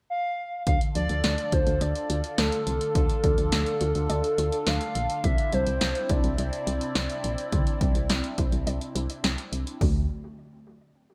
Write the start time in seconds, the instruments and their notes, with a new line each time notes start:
0.10 soft synth lead F5
0.67 fm bass D2, analog synth pad D3 D4 F4 A4, synth pluck D3, soft synth lead F5, kick, closed hi-hat
0.81 closed hi-hat
0.95 fm bass D2, synth pluck F3, soft synth lead D5, closed hi-hat
1.09 fm bass D2, closed hi-hat
1.24 fm bass D2, synth pluck A3, snare, closed hi-hat
1.38 closed hi-hat
1.52 fm bass D2, synth pluck F4, soft synth lead C5, kick, closed hi-hat
1.67 fm bass D2, closed hi-hat
1.81 fm bass D2, synth pluck D5, soft synth lead D5, closed hi-hat
1.95 closed hi-hat
2.09 fm bass D2, synth pluck F4, closed hi-hat
2.24 closed hi-hat
2.38 fm bass D2, synth pluck A3, soft synth lead A4, snare, closed hi-hat
2.52 closed hi-hat
2.67 fm bass C2, closed hi-hat
2.81 closed hi-hat
2.95 fm bass D2, synth pluck D3, soft synth lead A4, kick, closed hi-hat
3.10 closed hi-hat
3.24 fm bass D2, synth pluck F3, kick, closed hi-hat
3.38 fm bass D2, closed hi-hat
3.52 fm bass D2, synth pluck A3, snare, closed hi-hat
3.66 closed hi-hat
3.81 fm bass D2, synth pluck F4, closed hi-hat
3.95 fm bass D2, closed hi-hat
4.09 fm bass D2, synth pluck D5, closed hi-hat
4.24 closed hi-hat
4.38 fm bass D2, synth pluck F4, closed hi-hat
4.52 closed hi-hat
4.67 fm bass D2, synth pluck A3, soft synth lead F5, snare, closed hi-hat
4.81 closed hi-hat
4.95 fm bass A#1, closed hi-hat
5.10 closed hi-hat
5.24 fm bass C2, analog synth pad C3 C4 E4, synth pluck D3, soft synth lead E5, kick, closed hi-hat
5.38 closed hi-hat
5.52 fm bass C2, synth pluck G3, soft synth lead C5, closed hi-hat
5.67 fm bass C2, closed hi-hat
5.81 fm bass C2, synth pluck C4, snare, closed hi-hat
5.95 closed hi-hat
6.09 fm bass C2, synth pluck E4, soft synth lead D5, kick, closed hi-hat
6.24 fm bass C2, closed hi-hat
6.38 fm bass C2, synth pluck D5, closed hi-hat
6.53 closed hi-hat
6.67 fm bass C2, synth pluck E4, closed hi-hat
6.81 closed hi-hat
6.95 fm bass C2, synth pluck C4, snare, closed hi-hat
7.10 closed hi-hat
7.24 fm bass A#1, closed hi-hat
7.38 closed hi-hat
7.52 fm bass C2, synth pluck D3, kick, closed hi-hat
7.67 closed hi-hat
7.81 fm bass C2, synth pluck G3, kick, closed hi-hat
7.95 fm bass C2, closed hi-hat
8.10 fm bass C2, synth pluck C4, snare, closed hi-hat
8.24 closed hi-hat
8.38 fm bass C2, synth pluck E4, kick, closed hi-hat
8.52 fm bass C2, closed hi-hat
8.67 fm bass C2, synth pluck D5, closed hi-hat
8.81 closed hi-hat
8.95 fm bass C2, synth pluck E4, closed hi-hat
9.10 closed hi-hat
9.24 fm bass C2, synth pluck C4, snare, closed hi-hat
9.38 closed hi-hat
9.52 fm bass C2, closed hi-hat
9.67 closed hi-hat
9.81 fm bass D2, synth pluck D3 F#3 A3 F#4, kick, floor tom, open hi-hat